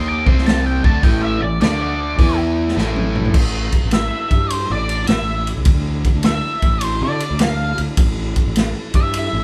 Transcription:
Already playing: D#2 D#3 A#3 D#4
0.09 D6
0.26 C2 C3 G3 C4 C6, kick
0.38 snare
0.46 A5, snare, open hi-hat
0.66 G5
0.84 D2 D3 A3 D4 A5, kick
1.03 A1 A2 E3 A3 G5, kick, open hi-hat
1.22 E5
1.42 A1 A2 E3 D5
1.61 D2 D3 A3 D4 D5, snare, open hi-hat
1.81 D5
2.19 E2 E3 B3 E4, kick, open hi-hat
2.68 snare
2.77 A1 A2 E3 A3, snare
2.96 high tom
3.15 mid tom
3.25 floor tom
3.34 A1, kick, crash
3.72 kick, ride
3.84 A1
3.91 E5, snare, ride
4.31 G2, kick, ride
4.50 C5, ride
4.70 A1 D5
4.89 ride
5.07 A1 E5, snare, ride
5.47 ride
5.57 C2
5.65 D2, kick, ride
6.04 kick, ride
6.14 D2
6.23 E5, snare, ride
6.62 A1, kick, ride
6.81 C5, ride
7.01 D3 D5
7.20 ride
7.31 D2
7.39 F5, snare, ride
7.78 D2, ride
7.97 A1, kick, ride
8.36 kick, ride
8.46 A1
8.55 snare, ride
8.94 G2 E5, kick, ride
9.13 ride
9.33 A1

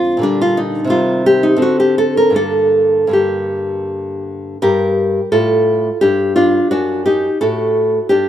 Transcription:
Already playing: F2 D3 G#3 F4
0.17 A#2 D3
0.22 G3 D4
0.42 F4
0.57 D#4
0.84 C3 D#3
0.89 G3 F4
1.26 G4
1.43 D#4
1.56 D3 C4
1.62 F#4
1.80 G4
1.98 A4
2.17 A#4
2.30 G2 D3
2.34 A#3 A4
3.07 G2 D3 A#3
3.13 G4
4.62 G2 G4 A#4
5.32 A2 F4 A4
6.01 G2 D4 G4
6.36 D4 F4
6.71 F#2 D4 F#4
7.06 D#4 G4
7.41 A2 F#4 A4
8.09 G2 D4 G4

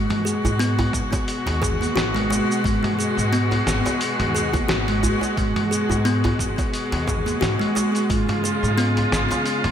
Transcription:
Already playing: B2 G#3 F#4
0.10 G#3, mid tom, open hi-hat
0.25 G#4, cabasa
0.45 G#2, djembe bass, cabasa
0.59 B3, open hi-hat, cabasa
0.78 open hi-hat, djembe tone, djembe bass
0.93 G#1, kick, mid tom, cabasa
1.12 kick, open hi-hat, djembe slap, djembe tone, cabasa
1.28 open hi-hat, cabasa
1.46 D#2, open hi-hat, djembe slap
1.62 G#4, kick, mid tom, djembe slap, cabasa
1.81 A#3, open hi-hat, cabasa
1.96 G#1 F#4, snare, open hi-hat, cabasa
2.15 G#3, open hi-hat, djembe tone
2.30 G#3, djembe slap, cabasa
2.51 cabasa
2.64 G#1 G#3, kick, open hi-hat, cabasa
2.83 G#3, mid tom, open hi-hat
2.99 G#4, cabasa
3.17 G#2, cabasa
3.33 B3, open hi-hat, cabasa
3.51 open hi-hat, djembe tone
3.66 G#1, snare, mid tom, cabasa
3.85 open hi-hat, djembe slap, djembe tone, cabasa
4.01 open hi-hat, cabasa
4.20 D#2, mid tom, open hi-hat
4.35 G#4, cabasa
4.53 A#3, kick, open hi-hat, djembe slap, djembe bass, cabasa
4.68 G#1 F#4, snare, open hi-hat, cabasa
4.88 G#3, open hi-hat
5.03 G#3, djembe bass, cabasa
5.21 djembe tone, cabasa
5.37 G#1 G#3, kick, open hi-hat, cabasa
5.56 G#3, mid tom, open hi-hat
5.71 G#4, cabasa
5.90 G#2, djembe bass, cabasa
6.05 B3, open hi-hat, cabasa
6.24 open hi-hat, djembe tone, djembe bass
6.39 G#1, kick, mid tom, cabasa
6.58 kick, open hi-hat, djembe slap, djembe tone, cabasa
6.74 open hi-hat, cabasa
6.92 D#2, open hi-hat, djembe slap
7.07 G#4, kick, mid tom, djembe slap, cabasa
7.26 A#3, open hi-hat, cabasa
7.41 G#2 F#4, snare, open hi-hat, cabasa
7.59 G#3, open hi-hat, djembe tone
7.75 G#3, djembe slap, cabasa
7.95 open hi-hat, cabasa
8.09 G#1 C#3 G#3 F4, kick, open hi-hat, cabasa
8.29 G#3, mid tom, open hi-hat
8.44 G#4, cabasa
8.63 G#2, cabasa
8.78 B3, open hi-hat, cabasa
8.97 open hi-hat, djembe tone
9.12 G#1, snare, mid tom, cabasa
9.31 open hi-hat, djembe slap, djembe tone, cabasa
9.46 open hi-hat, cabasa
9.64 D#2, mid tom, open hi-hat

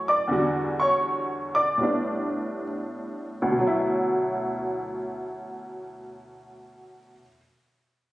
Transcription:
Already playing: F#2 E3 A3 F#4
0.08 D5 D6
0.28 E2 D3 G3
0.33 F#4
0.80 C#5 C#6
1.55 D5 D6
1.78 A2 G3 B3
1.83 D4
3.42 D2
3.51 B2
3.59 F#3
3.67 E4

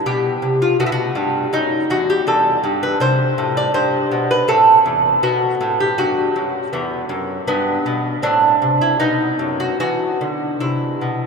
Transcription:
Already playing: G3
0.06 B2 G4
0.42 C3
0.62 F4
0.80 B2 A3 F#4
0.86 E4
0.92 F#4
1.15 G2
1.53 F#2 D#4
1.90 E2 F#4
2.10 G4
2.27 E2 G3 A4
2.64 G2
2.83 B4
3.00 C3 G3 C5
3.38 A2
3.57 D5
3.74 G2 C5
4.11 B2
4.31 B4
4.48 A2 C4 A4
4.86 E2
5.23 B2 B3 F#4
5.61 A2
5.80 G4
5.98 G2 F#4
6.36 F#2
6.73 E2 B3
7.09 F#2
7.47 G2 B3
7.86 B2
8.22 A2 C4 D4
8.62 C3
8.81 E4
9.00 B2 B3 D#4
9.39 F#2
9.60 F#4
9.80 E3 B3 F#4
10.21 D3
10.60 C3 E4
11.01 B2

